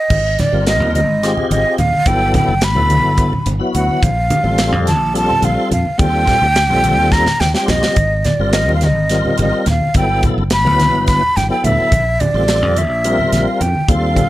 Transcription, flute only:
0, 0, Header, 1, 2, 480
1, 0, Start_track
1, 0, Tempo, 562324
1, 92, Time_signature, 7, 3, 24, 8
1, 12201, End_track
2, 0, Start_track
2, 0, Title_t, "Flute"
2, 0, Program_c, 0, 73
2, 0, Note_on_c, 0, 75, 86
2, 340, Note_on_c, 0, 74, 81
2, 353, Note_off_c, 0, 75, 0
2, 574, Note_off_c, 0, 74, 0
2, 578, Note_on_c, 0, 75, 92
2, 796, Note_off_c, 0, 75, 0
2, 812, Note_on_c, 0, 75, 75
2, 1254, Note_off_c, 0, 75, 0
2, 1287, Note_on_c, 0, 75, 83
2, 1508, Note_off_c, 0, 75, 0
2, 1522, Note_on_c, 0, 77, 88
2, 1769, Note_on_c, 0, 79, 98
2, 1782, Note_off_c, 0, 77, 0
2, 2005, Note_off_c, 0, 79, 0
2, 2011, Note_on_c, 0, 79, 89
2, 2253, Note_on_c, 0, 83, 106
2, 2266, Note_off_c, 0, 79, 0
2, 2966, Note_off_c, 0, 83, 0
2, 3194, Note_on_c, 0, 78, 85
2, 3437, Note_on_c, 0, 77, 97
2, 3450, Note_off_c, 0, 78, 0
2, 4154, Note_off_c, 0, 77, 0
2, 4159, Note_on_c, 0, 81, 88
2, 4383, Note_off_c, 0, 81, 0
2, 4415, Note_on_c, 0, 81, 103
2, 4650, Note_on_c, 0, 77, 92
2, 4663, Note_off_c, 0, 81, 0
2, 4882, Note_off_c, 0, 77, 0
2, 4887, Note_on_c, 0, 77, 85
2, 5107, Note_on_c, 0, 79, 111
2, 5120, Note_off_c, 0, 77, 0
2, 6078, Note_on_c, 0, 82, 108
2, 6091, Note_off_c, 0, 79, 0
2, 6319, Note_on_c, 0, 79, 94
2, 6332, Note_off_c, 0, 82, 0
2, 6442, Note_off_c, 0, 79, 0
2, 6446, Note_on_c, 0, 79, 77
2, 6554, Note_off_c, 0, 79, 0
2, 6559, Note_on_c, 0, 75, 96
2, 7044, Note_on_c, 0, 74, 82
2, 7057, Note_off_c, 0, 75, 0
2, 7281, Note_on_c, 0, 75, 94
2, 7294, Note_off_c, 0, 74, 0
2, 7465, Note_off_c, 0, 75, 0
2, 7471, Note_on_c, 0, 77, 71
2, 7551, Note_on_c, 0, 75, 87
2, 7564, Note_off_c, 0, 77, 0
2, 8021, Note_off_c, 0, 75, 0
2, 8028, Note_on_c, 0, 75, 79
2, 8243, Note_off_c, 0, 75, 0
2, 8276, Note_on_c, 0, 77, 80
2, 8487, Note_off_c, 0, 77, 0
2, 8515, Note_on_c, 0, 79, 88
2, 8727, Note_off_c, 0, 79, 0
2, 8986, Note_on_c, 0, 83, 119
2, 9427, Note_off_c, 0, 83, 0
2, 9451, Note_on_c, 0, 83, 109
2, 9701, Note_on_c, 0, 79, 96
2, 9714, Note_off_c, 0, 83, 0
2, 9813, Note_off_c, 0, 79, 0
2, 9818, Note_on_c, 0, 79, 87
2, 9939, Note_on_c, 0, 76, 101
2, 9952, Note_off_c, 0, 79, 0
2, 10417, Note_on_c, 0, 74, 93
2, 10430, Note_off_c, 0, 76, 0
2, 10908, Note_on_c, 0, 76, 92
2, 10921, Note_off_c, 0, 74, 0
2, 11503, Note_on_c, 0, 77, 76
2, 11516, Note_off_c, 0, 76, 0
2, 11617, Note_on_c, 0, 79, 87
2, 11630, Note_off_c, 0, 77, 0
2, 11860, Note_on_c, 0, 77, 96
2, 11872, Note_off_c, 0, 79, 0
2, 12201, Note_off_c, 0, 77, 0
2, 12201, End_track
0, 0, End_of_file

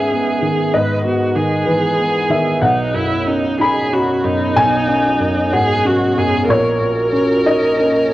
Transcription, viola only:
0, 0, Header, 1, 2, 480
1, 0, Start_track
1, 0, Key_signature, 5, "major"
1, 0, Tempo, 630252
1, 557, Time_signature, 6, 3, 24, 8
1, 1998, Tempo, 645161
1, 5358, Tempo, 665188
1, 6076, End_track
2, 0, Start_track
2, 0, Title_t, "Viola"
2, 0, Program_c, 0, 41
2, 0, Note_on_c, 0, 68, 45
2, 560, Note_on_c, 0, 71, 43
2, 572, Note_off_c, 0, 68, 0
2, 790, Note_off_c, 0, 71, 0
2, 794, Note_on_c, 0, 66, 46
2, 1032, Note_on_c, 0, 68, 45
2, 1043, Note_off_c, 0, 66, 0
2, 1993, Note_off_c, 0, 68, 0
2, 1998, Note_on_c, 0, 63, 44
2, 2233, Note_on_c, 0, 64, 50
2, 2244, Note_off_c, 0, 63, 0
2, 2480, Note_on_c, 0, 63, 45
2, 2491, Note_off_c, 0, 64, 0
2, 2721, Note_off_c, 0, 63, 0
2, 2726, Note_on_c, 0, 68, 57
2, 2969, Note_on_c, 0, 66, 48
2, 2981, Note_off_c, 0, 68, 0
2, 3200, Note_on_c, 0, 63, 56
2, 3211, Note_off_c, 0, 66, 0
2, 4162, Note_on_c, 0, 68, 64
2, 4174, Note_off_c, 0, 63, 0
2, 4410, Note_on_c, 0, 66, 53
2, 4421, Note_off_c, 0, 68, 0
2, 4643, Note_on_c, 0, 68, 56
2, 4654, Note_off_c, 0, 66, 0
2, 4869, Note_off_c, 0, 68, 0
2, 4874, Note_on_c, 0, 70, 62
2, 6076, Note_off_c, 0, 70, 0
2, 6076, End_track
0, 0, End_of_file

